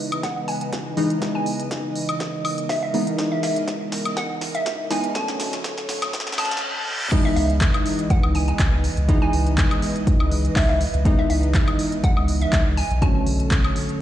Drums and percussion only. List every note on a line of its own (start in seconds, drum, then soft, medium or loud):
0.12 closed hi-hat medium
0.12 high woodblock medium
0.23 kick loud
0.23 snare medium
0.23 closed hi-hat medium
0.48 open hi-hat loud
0.61 closed hi-hat medium
0.73 kick loud
0.73 snare medium
0.73 closed hi-hat medium
0.97 open hi-hat loud
1.10 closed hi-hat medium
1.22 kick loud
1.22 snare medium
1.22 closed hi-hat medium
1.46 open hi-hat loud
1.60 closed hi-hat medium
1.71 kick loud
1.71 snare medium
1.71 closed hi-hat medium
1.96 open hi-hat loud
2.09 closed hi-hat medium
2.09 high woodblock medium
2.20 kick loud
2.20 snare medium
2.20 closed hi-hat soft
2.45 open hi-hat loud
2.45 high woodblock medium
2.58 closed hi-hat medium
2.69 kick loud
2.69 snare medium
2.69 open hi-hat medium
2.94 open hi-hat loud
3.07 closed hi-hat medium
3.18 kick loud
3.18 snare medium
3.18 closed hi-hat soft
3.43 snare medium
3.43 open hi-hat loud
3.56 closed hi-hat medium
3.68 kick loud
3.68 snare medium
3.68 closed hi-hat soft
3.92 snare medium
3.92 open hi-hat loud
4.05 closed hi-hat medium
4.05 high woodblock medium
4.17 kick loud
4.17 snare medium
4.17 closed hi-hat soft
4.41 snare medium
4.41 open hi-hat loud
4.55 closed hi-hat medium
4.66 kick loud
4.66 snare medium
4.66 closed hi-hat soft
4.91 snare medium
4.91 open hi-hat loud
5.04 closed hi-hat medium
5.15 kick loud
5.15 snare medium
5.15 closed hi-hat medium
5.28 snare medium
5.40 snare loud
5.40 open hi-hat loud
5.53 snare medium
5.53 closed hi-hat medium
5.64 kick loud
5.64 snare loud
5.64 closed hi-hat soft
5.78 snare medium
5.89 snare loud
5.89 open hi-hat loud
6.02 snare medium
6.02 closed hi-hat medium
6.02 high woodblock medium
6.13 kick loud
6.13 snare loud
6.13 closed hi-hat medium
6.20 snare medium
6.27 snare medium
6.32 snare loud
6.38 snare loud
6.38 open hi-hat loud
6.38 high woodblock medium
6.45 snare medium
6.51 snare medium
6.51 closed hi-hat medium
6.57 snare loud
7.12 kick loud
7.12 closed hi-hat medium
7.12 crash loud
7.36 open hi-hat loud
7.50 closed hi-hat medium
7.61 kick loud
7.61 clap loud
7.61 closed hi-hat medium
7.74 closed hi-hat soft
7.74 high woodblock medium
7.86 open hi-hat loud
7.99 closed hi-hat medium
8.10 kick loud
8.10 closed hi-hat medium
8.23 high woodblock medium
8.35 open hi-hat loud
8.48 closed hi-hat medium
8.59 kick loud
8.59 clap loud
8.59 closed hi-hat medium
8.84 open hi-hat loud
8.97 closed hi-hat medium
9.09 kick loud
9.09 closed hi-hat medium
9.33 open hi-hat loud
9.47 closed hi-hat medium
9.58 kick loud
9.58 clap loud
9.58 closed hi-hat medium
9.71 closed hi-hat soft
9.71 high woodblock medium
9.82 open hi-hat loud
9.96 closed hi-hat medium
10.07 kick loud
10.07 closed hi-hat medium
10.20 high woodblock medium
10.32 open hi-hat loud
10.45 closed hi-hat medium
10.56 kick loud
10.56 clap loud
10.56 open hi-hat medium
10.81 open hi-hat loud
10.94 closed hi-hat medium
11.05 kick loud
11.05 closed hi-hat medium
11.30 open hi-hat loud
11.43 closed hi-hat medium
11.54 kick loud
11.54 clap loud
11.54 closed hi-hat medium
11.68 closed hi-hat soft
11.68 high woodblock medium
11.79 open hi-hat loud
11.92 closed hi-hat medium
12.04 kick loud
12.04 closed hi-hat medium
12.17 high woodblock medium
12.28 open hi-hat loud
12.41 closed hi-hat medium
12.53 kick loud
12.53 clap loud
12.53 closed hi-hat medium
12.77 open hi-hat loud
12.91 closed hi-hat medium
13.02 kick loud
13.02 closed hi-hat medium
13.27 open hi-hat loud
13.40 closed hi-hat medium
13.51 kick loud
13.51 clap loud
13.51 closed hi-hat medium
13.64 closed hi-hat soft
13.64 high woodblock medium
13.76 open hi-hat loud
13.89 closed hi-hat medium